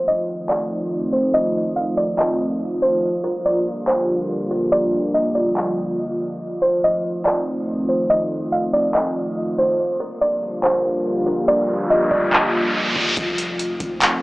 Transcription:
Already playing: analog synth pad D#3 F3 A3 C4 F4
0.08 kalimba D#5
0.49 kalimba D5, clap
1.13 kalimba C5
1.34 kalimba D#5
1.76 kalimba F5
1.97 kalimba D5
2.18 kalimba D#5, clap
2.82 kalimba C5
3.03 analog synth pad D3 G3 A#3
3.24 kalimba A#4
3.46 kalimba D5
3.87 kalimba C5, clap
4.51 kalimba A#4
4.72 kalimba D5
5.14 kalimba D#5
5.35 kalimba D5
5.57 clap
6.41 analog synth pad D#3 A3 C4
6.62 kalimba C5
6.84 kalimba D#5
7.25 kalimba D5, clap
7.89 kalimba C5
8.10 kalimba D#5
8.52 kalimba F5
8.73 kalimba D5
8.95 kalimba D#5, clap
9.58 kalimba C5
9.79 analog synth pad D3 F3 G3 A#3 F4, riser
10.00 kalimba A#4
10.21 kalimba D5
10.63 kalimba C5, clap
11.27 kalimba A#4
11.48 kalimba D5
11.90 kalimba D#5
12.11 kalimba D5, kick
12.33 clap
12.96 kick
13.17 808-style bass F1, analog synth pad D#3 F3 A3 C4 F4, kick, closed hi-hat
13.38 closed hi-hat
13.59 closed hi-hat
13.80 808-style bass F1, kick, closed hi-hat
14.02 clap, closed hi-hat

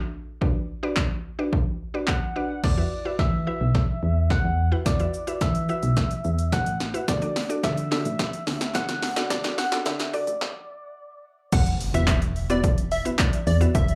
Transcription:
Already playing: synth pluck D4 F#4 A4 E5
0.41 synth pluck D4 F#4 B4 D5, kick
0.83 synth pluck D4 F#4 B4 D5
0.96 kick, snare, clap
1.39 synth pluck D4 F#4 B4 D5
1.53 kick
1.94 synth pluck D4 F#4 B4 D5
2.07 soft synth lead F#5, kick, snare, clap
2.36 synth pluck D4 F#4 B4 D5
2.64 fm bass E2, soft synth lead D5, kick, snare, crash
2.77 synth pluck E4 F#4 B4 E5
3.05 synth pluck E4 F#4 B4 E5
3.19 fm bass E3, soft synth lead E5, kick, snare
3.47 synth pluck E4 F#4 B4 E5, soft synth lead E5
3.61 fm bass B1
3.75 kick, snare
4.03 fm bass E2
4.30 soft synth lead F#5, kick, snare
4.44 fm bass E2
4.72 synth pluck E4 F#4 B4 F#5
4.86 fm bass E2, soft synth lead D5, kick, snare, closed hi-hat, shaker
4.99 synth pluck E4 F#4 B4 E5, closed hi-hat, shaker
5.14 shaker
5.27 synth pluck E4 F#4 B4 E5, closed hi-hat, shaker
5.41 fm bass E3, soft synth lead E5, kick, snare, closed hi-hat, shaker
5.55 closed hi-hat, shaker
5.69 synth pluck E4 F#4 B4 E5, soft synth lead E5, shaker
5.83 fm bass B1, closed hi-hat, shaker
5.97 kick, snare, closed hi-hat, shaker
6.11 closed hi-hat, shaker
6.24 fm bass E2, shaker
6.39 closed hi-hat, shaker
6.52 soft synth lead F#5, kick, snare, closed hi-hat, shaker
6.66 fm bass A1, closed hi-hat, shaker
6.80 snare, shaker
6.94 synth pluck E4 F#4 B4 E5, closed hi-hat, shaker
7.08 fm bass D2, soft synth lead D5, kick, snare, closed hi-hat, shaker
7.22 synth pluck D4 F#4 A4 D5, closed hi-hat, shaker
7.36 snare, open hi-hat, shaker
7.49 synth pluck D4 F#4 A4 D5, closed hi-hat, shaker
7.64 fm bass D3, soft synth lead E5, kick, snare, clap, closed hi-hat, shaker
7.77 closed hi-hat, shaker
7.91 synth pluck D4 F#4 A4 D5, soft synth lead E5, snare, open hi-hat, shaker
8.05 fm bass A1, closed hi-hat, shaker
8.19 kick, snare, closed hi-hat, shaker
8.33 closed hi-hat, shaker
8.47 fm bass D2, snare, open hi-hat, shaker
8.61 snare, closed hi-hat, shaker
8.74 soft synth lead F#5, kick, snare, clap, closed hi-hat, shaker
8.89 fm bass D2, snare, closed hi-hat, shaker
9.02 snare, open hi-hat, shaker
9.16 synth pluck D4 F#4 A4 D5, snare, closed hi-hat, shaker
9.30 fm bass D2, soft synth lead D5, kick, snare, closed hi-hat, shaker
9.44 synth pluck D4 F#4 A4 D5, snare, closed hi-hat, shaker
9.58 soft synth lead F#5, snare, open hi-hat, shaker
9.72 synth pluck D4 F#4 A4 D5, snare, closed hi-hat, shaker
9.86 fm bass D3, soft synth lead E5, snare, clap, closed hi-hat, shaker
9.99 snare, closed hi-hat, shaker
10.13 synth pluck D4 F#4 A4 D5, soft synth lead D5, open hi-hat, shaker
10.27 fm bass A1, closed hi-hat, shaker
10.41 kick, snare
11.52 fm bass E1, digital synth lead F#5, kick, closed hi-hat, crash, impact, shaker
11.66 closed hi-hat, shaker
11.81 open hi-hat, shaker
11.94 fm bass E1, synth pluck B3 E4 F#4 B4 E5, digital synth lead E5, closed hi-hat, shaker
12.07 digital synth lead E5, kick, snare, clap, closed hi-hat, shaker
12.22 closed hi-hat, shaker
12.36 open hi-hat, shaker
12.50 synth pluck B3 E4 F#4 B4 D5, digital synth lead D5, closed hi-hat, shaker
12.64 kick, closed hi-hat, shaker
12.78 closed hi-hat, shaker
12.91 digital synth lead E5, open hi-hat, shaker
13.05 synth pluck B3 E4 F#4 B4 E5, closed hi-hat, shaker
13.18 digital synth lead D5, kick, snare, clap, closed hi-hat, shaker
13.33 closed hi-hat, shaker
13.47 fm bass E2, digital synth lead D5, open hi-hat, shaker
13.61 synth pluck B3 E4 F#4 B4 E5, closed hi-hat, shaker
13.75 fm bass E1, digital synth lead E5, kick, closed hi-hat, shaker
13.88 closed hi-hat, shaker

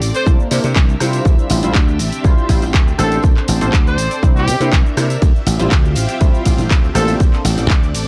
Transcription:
Already playing: string machine C4 A4 D5
0.01 slap bass A1, open hi-hat, tambourine, shaker
0.14 horn section C5, closed hi-hat, tambourine, shaker
0.26 slap bass C2, analog polysynth A#3 D4 E4 C5, string machine D4 A#4 E5, kick, closed hi-hat, tambourine, shaker
0.39 muted slap bass stroke, shaker
0.51 slap bass C3, analog polysynth A#3 D4 E4 C5, open hi-hat, tambourine, shaker
0.64 slap bass C3, closed hi-hat, tambourine, shaker
0.76 slap bass C2, kick, clap, closed hi-hat, shaker
0.89 shaker
1.00 slap bass C3, analog polysynth G3 E4 F4 C5, cross-stick, open hi-hat, tambourine, shaker
1.13 closed hi-hat, tambourine, shaker
1.25 slap bass D2, string machine C4 D4 G4, kick, closed hi-hat, tambourine, shaker
1.39 shaker
1.50 slap bass A1, open hi-hat, tambourine, shaker
1.63 slap bass A1, analog polysynth G3 E4 F4 C5, closed hi-hat, tambourine, shaker
1.75 slap bass D2, kick, clap, closed hi-hat, tambourine, shaker
1.88 shaker
1.99 slap bass A1, open hi-hat, tambourine, shaker
2.13 closed hi-hat, tambourine, shaker
2.24 slap bass D2, analog polysynth G3 E4 F4 C5, kick, closed hi-hat, tambourine, shaker
2.38 shaker
2.49 slap bass A1, analog polysynth G3 E4 F4 C5, kick, open hi-hat, tambourine, shaker
2.62 slap bass A1, closed hi-hat, tambourine, shaker
2.73 slap bass D2, kick, clap, closed hi-hat, tambourine, shaker
2.88 shaker
2.98 slap bass A1, analog polysynth A#3 D4 A4 C5, horn section A4, cross-stick, open hi-hat, tambourine, shaker
3.12 closed hi-hat, tambourine, shaker
3.22 slap bass D2, string machine A4 D5, kick, closed hi-hat, tambourine, shaker
3.36 muted slap bass stroke, clap, shaker
3.48 slap bass A1, open hi-hat, tambourine, shaker
3.61 slap bass A1, analog polysynth A#3 D4 A4 C5, closed hi-hat, tambourine, shaker
3.73 slap bass D2, kick, clap, closed hi-hat, shaker
3.86 horn section C5, shaker
3.98 slap bass A1, open hi-hat, tambourine, shaker
4.11 closed hi-hat, tambourine, shaker
4.22 slap bass C2, analog polysynth A#3 D4 E4 C5, string machine D4 A#4 E5, kick, closed hi-hat, tambourine, shaker
4.36 horn section G4, shaker
4.47 slap bass C3, open hi-hat, tambourine, shaker
4.60 slap bass C3, analog polysynth A#3 D4 E4 C5, closed hi-hat, tambourine, shaker
4.72 slap bass C2, kick, clap, closed hi-hat, tambourine, shaker
4.86 shaker
4.97 slap bass C3, analog polysynth A#3 D4 E4 C5, cross-stick, open hi-hat, tambourine, shaker
5.10 closed hi-hat, tambourine, shaker
5.22 slap bass D2, string machine C4 F4 G4 E5, kick, closed hi-hat, ride, tambourine, shaker
5.36 shaker
5.46 slap bass A1, open hi-hat, ride, tambourine, shaker
5.59 slap bass A1, analog polysynth G3 E4 F4 C5, closed hi-hat, tambourine, shaker
5.71 slap bass D2, kick, clap, closed hi-hat, ride, shaker
5.85 shaker
5.95 slap bass A1, open hi-hat, ride, tambourine, shaker
6.09 closed hi-hat, tambourine, shaker
6.21 slap bass D2, analog polysynth G3 E4 F4 C5, kick, closed hi-hat, ride, tambourine, shaker
6.35 shaker
6.45 slap bass A1, analog polysynth G3 E4 F4 C5, kick, open hi-hat, ride, tambourine, shaker
6.58 slap bass A1, closed hi-hat, tambourine, shaker
6.71 slap bass D2, kick, clap, closed hi-hat, ride, tambourine, shaker
6.84 shaker
6.95 slap bass A1, analog polysynth A#3 D4 A4 C5, horn section A4, cross-stick, open hi-hat, ride, tambourine, shaker
7.08 closed hi-hat, tambourine, shaker
7.20 slap bass D2, string machine A4 D5, kick, closed hi-hat, ride, shaker
7.33 muted slap bass stroke, clap, shaker
7.44 slap bass A1, open hi-hat, ride, tambourine, shaker
7.57 slap bass A1, closed hi-hat, tambourine, shaker
7.69 slap bass D2, kick, clap, closed hi-hat, ride, tambourine, shaker
7.83 shaker
7.94 slap bass A1, open hi-hat, ride, tambourine, shaker

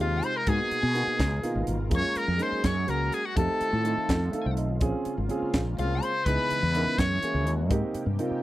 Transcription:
Already playing: analog synth pad C3 G#3 D#4 F4
0.00 fretless electric bass D#2, grand piano G#3 C4 D#4 G4, muted trumpet F4, overdriven electric guitar F5
0.23 muted trumpet C5, overdriven electric guitar C6, closed hi-hat
0.36 muted trumpet A#4, overdriven electric guitar A#5
0.46 fretless electric bass G#2, analog synth pad B2 F#4 A#4, grand piano A#3 B3 D#4 F#4, muted trumpet G#4, overdriven electric guitar G#5, kick, closed hi-hat
0.71 muted fretless electric bass stroke, closed hi-hat
0.83 fretless electric bass B2
0.94 grand piano A#3 B3 D#4 F#4, closed hi-hat
1.07 muted fretless electric bass stroke
1.19 fretless electric bass C#2, analog synth pad B2 D#3 F4 A#4, kick, snare, closed hi-hat
1.42 grand piano A#3 B3 D#4 F4, closed hi-hat
1.55 fretless electric bass G#1
1.67 fretless electric bass G#1, closed hi-hat
1.90 fretless electric bass F#2, analog synth pad F#3 G#3 G#4, grand piano G#3 A#3 C#4 F4, kick, closed hi-hat
1.94 muted trumpet C#5, overdriven electric guitar C#6
2.15 muted trumpet A#4, overdriven electric guitar A#5, muted fretless electric bass stroke, closed hi-hat
2.28 fretless electric bass F2
2.38 grand piano G#3 A#3 C#4 D#4, muted trumpet C5, closed hi-hat
2.43 overdriven electric guitar C6
2.52 muted fretless electric bass stroke
2.64 fretless electric bass F#2, muted trumpet C#5, overdriven electric guitar C#6, kick, snare, closed hi-hat
2.86 fretless electric bass C#2, grand piano G#3 A#3 C#4 F#4, muted trumpet A#4, closed hi-hat
2.90 overdriven electric guitar A#5
3.12 muted trumpet G#4, overdriven electric guitar G#5, closed hi-hat
3.25 muted trumpet F#4, overdriven electric guitar F#5
3.36 fretless electric bass F2, analog synth pad D#3 A3 C4 F4, grand piano A3 C4 D#4 G4, muted trumpet A4, overdriven electric guitar A5, kick, closed hi-hat
3.61 muted fretless electric bass stroke, closed hi-hat
3.73 fretless electric bass A2
3.84 grand piano A3 C4 D#4 A4, closed hi-hat
3.97 muted fretless electric bass stroke
4.09 fretless electric bass F2, kick, snare, closed hi-hat
4.32 grand piano A3 C4 D#4 A4 F5, muted fretless electric bass stroke, closed hi-hat
4.46 fretless electric bass C2
4.57 fretless electric bass B1, grand piano D#5, closed hi-hat
4.80 fretless electric bass A#1, analog synth pad C#3 G#3 A#3 F4, grand piano C4 C#4 F4 G#4, kick, closed hi-hat
5.05 muted fretless electric bass stroke, closed hi-hat
5.18 fretless electric bass G#1
5.29 grand piano C4 C#4 F4 G#4, closed hi-hat
5.42 muted fretless electric bass stroke
5.54 fretless electric bass A#1, kick, snare, closed hi-hat
5.78 fretless electric bass C2, grand piano C4 C#4 F4 G#4, muted trumpet F4, overdriven electric guitar F5, closed hi-hat
6.02 muted trumpet C5, overdriven electric guitar C6, closed hi-hat
6.25 fretless electric bass C#2, analog synth pad C#3 E3 B3, grand piano B3 D#4 E4 G#4, muted trumpet B4, overdriven electric guitar B5, kick, closed hi-hat
6.50 muted fretless electric bass stroke, closed hi-hat
6.63 fretless electric bass E2
6.74 grand piano B3 D#4 E4 A#4, closed hi-hat
6.87 muted fretless electric bass stroke
6.98 fretless electric bass F#2, analog synth pad E3 A#3 F#4, muted trumpet C#5, overdriven electric guitar C#6, kick, snare, closed hi-hat
7.22 grand piano A#3 C#4 E4 G#4, muted fretless electric bass stroke, closed hi-hat
7.34 fretless electric bass C#2
7.46 fretless electric bass D#2, closed hi-hat
7.70 fretless electric bass G#2, analog synth pad C3 G4, grand piano A#3 C4 D#4 G4, kick, closed hi-hat
7.94 muted fretless electric bass stroke, closed hi-hat
8.06 fretless electric bass G2
8.19 grand piano A#3 C4 D#4 F4, closed hi-hat
8.31 muted fretless electric bass stroke

